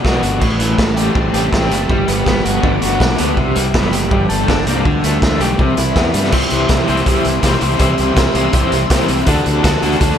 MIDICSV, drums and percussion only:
0, 0, Header, 1, 2, 480
1, 0, Start_track
1, 0, Tempo, 368777
1, 547, Time_signature, 4, 2, 24, 8
1, 13250, End_track
2, 0, Start_track
2, 0, Title_t, "Drums"
2, 61, Note_on_c, 9, 36, 98
2, 75, Note_on_c, 9, 38, 99
2, 191, Note_off_c, 9, 36, 0
2, 206, Note_off_c, 9, 38, 0
2, 298, Note_on_c, 9, 42, 88
2, 428, Note_off_c, 9, 42, 0
2, 538, Note_on_c, 9, 49, 100
2, 541, Note_on_c, 9, 36, 98
2, 669, Note_off_c, 9, 49, 0
2, 671, Note_off_c, 9, 36, 0
2, 779, Note_on_c, 9, 42, 82
2, 909, Note_off_c, 9, 42, 0
2, 1021, Note_on_c, 9, 36, 107
2, 1032, Note_on_c, 9, 38, 109
2, 1152, Note_off_c, 9, 36, 0
2, 1163, Note_off_c, 9, 38, 0
2, 1264, Note_on_c, 9, 42, 90
2, 1394, Note_off_c, 9, 42, 0
2, 1502, Note_on_c, 9, 36, 109
2, 1632, Note_off_c, 9, 36, 0
2, 1744, Note_on_c, 9, 42, 80
2, 1874, Note_off_c, 9, 42, 0
2, 1986, Note_on_c, 9, 36, 101
2, 2003, Note_on_c, 9, 38, 108
2, 2116, Note_off_c, 9, 36, 0
2, 2133, Note_off_c, 9, 38, 0
2, 2232, Note_on_c, 9, 42, 102
2, 2363, Note_off_c, 9, 42, 0
2, 2467, Note_on_c, 9, 36, 107
2, 2597, Note_off_c, 9, 36, 0
2, 2708, Note_on_c, 9, 42, 91
2, 2838, Note_off_c, 9, 42, 0
2, 2948, Note_on_c, 9, 36, 109
2, 2963, Note_on_c, 9, 38, 109
2, 3078, Note_off_c, 9, 36, 0
2, 3093, Note_off_c, 9, 38, 0
2, 3196, Note_on_c, 9, 42, 99
2, 3327, Note_off_c, 9, 42, 0
2, 3429, Note_on_c, 9, 36, 113
2, 3560, Note_off_c, 9, 36, 0
2, 3669, Note_on_c, 9, 42, 93
2, 3799, Note_off_c, 9, 42, 0
2, 3908, Note_on_c, 9, 36, 107
2, 3923, Note_on_c, 9, 38, 118
2, 4038, Note_off_c, 9, 36, 0
2, 4053, Note_off_c, 9, 38, 0
2, 4144, Note_on_c, 9, 42, 101
2, 4274, Note_off_c, 9, 42, 0
2, 4389, Note_on_c, 9, 36, 99
2, 4519, Note_off_c, 9, 36, 0
2, 4629, Note_on_c, 9, 42, 92
2, 4759, Note_off_c, 9, 42, 0
2, 4871, Note_on_c, 9, 36, 110
2, 4883, Note_on_c, 9, 38, 113
2, 5002, Note_off_c, 9, 36, 0
2, 5014, Note_off_c, 9, 38, 0
2, 5114, Note_on_c, 9, 42, 99
2, 5244, Note_off_c, 9, 42, 0
2, 5354, Note_on_c, 9, 36, 124
2, 5484, Note_off_c, 9, 36, 0
2, 5593, Note_on_c, 9, 42, 83
2, 5723, Note_off_c, 9, 42, 0
2, 5837, Note_on_c, 9, 36, 110
2, 5854, Note_on_c, 9, 38, 114
2, 5967, Note_off_c, 9, 36, 0
2, 5984, Note_off_c, 9, 38, 0
2, 6076, Note_on_c, 9, 42, 98
2, 6206, Note_off_c, 9, 42, 0
2, 6318, Note_on_c, 9, 36, 100
2, 6448, Note_off_c, 9, 36, 0
2, 6558, Note_on_c, 9, 42, 96
2, 6688, Note_off_c, 9, 42, 0
2, 6797, Note_on_c, 9, 36, 113
2, 6809, Note_on_c, 9, 38, 109
2, 6927, Note_off_c, 9, 36, 0
2, 6939, Note_off_c, 9, 38, 0
2, 7037, Note_on_c, 9, 42, 94
2, 7167, Note_off_c, 9, 42, 0
2, 7277, Note_on_c, 9, 36, 122
2, 7407, Note_off_c, 9, 36, 0
2, 7513, Note_on_c, 9, 42, 91
2, 7643, Note_off_c, 9, 42, 0
2, 7756, Note_on_c, 9, 36, 111
2, 7762, Note_on_c, 9, 38, 102
2, 7886, Note_off_c, 9, 36, 0
2, 7893, Note_off_c, 9, 38, 0
2, 7991, Note_on_c, 9, 42, 105
2, 8121, Note_off_c, 9, 42, 0
2, 8129, Note_on_c, 9, 38, 32
2, 8229, Note_on_c, 9, 49, 114
2, 8234, Note_on_c, 9, 36, 104
2, 8259, Note_off_c, 9, 38, 0
2, 8351, Note_on_c, 9, 42, 47
2, 8359, Note_off_c, 9, 49, 0
2, 8365, Note_off_c, 9, 36, 0
2, 8462, Note_off_c, 9, 42, 0
2, 8462, Note_on_c, 9, 42, 69
2, 8593, Note_off_c, 9, 42, 0
2, 8705, Note_on_c, 9, 42, 98
2, 8713, Note_on_c, 9, 36, 108
2, 8719, Note_on_c, 9, 38, 108
2, 8835, Note_off_c, 9, 42, 0
2, 8843, Note_off_c, 9, 36, 0
2, 8849, Note_off_c, 9, 38, 0
2, 8952, Note_on_c, 9, 42, 73
2, 9072, Note_off_c, 9, 42, 0
2, 9072, Note_on_c, 9, 42, 43
2, 9192, Note_off_c, 9, 42, 0
2, 9192, Note_on_c, 9, 42, 96
2, 9194, Note_on_c, 9, 36, 111
2, 9323, Note_off_c, 9, 42, 0
2, 9324, Note_off_c, 9, 36, 0
2, 9431, Note_on_c, 9, 42, 74
2, 9561, Note_off_c, 9, 42, 0
2, 9669, Note_on_c, 9, 42, 98
2, 9672, Note_on_c, 9, 36, 111
2, 9683, Note_on_c, 9, 38, 110
2, 9799, Note_off_c, 9, 42, 0
2, 9802, Note_off_c, 9, 36, 0
2, 9813, Note_off_c, 9, 38, 0
2, 9905, Note_on_c, 9, 42, 82
2, 10035, Note_off_c, 9, 42, 0
2, 10144, Note_on_c, 9, 42, 100
2, 10150, Note_on_c, 9, 36, 118
2, 10274, Note_off_c, 9, 42, 0
2, 10280, Note_off_c, 9, 36, 0
2, 10385, Note_on_c, 9, 42, 76
2, 10515, Note_off_c, 9, 42, 0
2, 10627, Note_on_c, 9, 42, 108
2, 10630, Note_on_c, 9, 36, 125
2, 10641, Note_on_c, 9, 38, 109
2, 10757, Note_off_c, 9, 42, 0
2, 10760, Note_off_c, 9, 36, 0
2, 10771, Note_off_c, 9, 38, 0
2, 10866, Note_on_c, 9, 42, 88
2, 10997, Note_off_c, 9, 42, 0
2, 11102, Note_on_c, 9, 42, 102
2, 11109, Note_on_c, 9, 36, 127
2, 11232, Note_off_c, 9, 42, 0
2, 11239, Note_off_c, 9, 36, 0
2, 11349, Note_on_c, 9, 42, 78
2, 11479, Note_off_c, 9, 42, 0
2, 11587, Note_on_c, 9, 42, 109
2, 11589, Note_on_c, 9, 36, 116
2, 11601, Note_on_c, 9, 38, 116
2, 11717, Note_off_c, 9, 42, 0
2, 11719, Note_off_c, 9, 36, 0
2, 11731, Note_off_c, 9, 38, 0
2, 11824, Note_on_c, 9, 42, 84
2, 11944, Note_off_c, 9, 42, 0
2, 11944, Note_on_c, 9, 42, 40
2, 12059, Note_off_c, 9, 42, 0
2, 12059, Note_on_c, 9, 42, 103
2, 12066, Note_on_c, 9, 36, 108
2, 12189, Note_off_c, 9, 42, 0
2, 12196, Note_off_c, 9, 36, 0
2, 12310, Note_on_c, 9, 42, 73
2, 12440, Note_off_c, 9, 42, 0
2, 12548, Note_on_c, 9, 42, 96
2, 12550, Note_on_c, 9, 36, 112
2, 12563, Note_on_c, 9, 38, 118
2, 12679, Note_off_c, 9, 42, 0
2, 12680, Note_off_c, 9, 36, 0
2, 12693, Note_off_c, 9, 38, 0
2, 12789, Note_on_c, 9, 42, 73
2, 12912, Note_off_c, 9, 42, 0
2, 12912, Note_on_c, 9, 42, 45
2, 13027, Note_off_c, 9, 42, 0
2, 13027, Note_on_c, 9, 42, 96
2, 13029, Note_on_c, 9, 36, 122
2, 13152, Note_off_c, 9, 42, 0
2, 13152, Note_on_c, 9, 42, 41
2, 13159, Note_off_c, 9, 36, 0
2, 13250, Note_off_c, 9, 42, 0
2, 13250, End_track
0, 0, End_of_file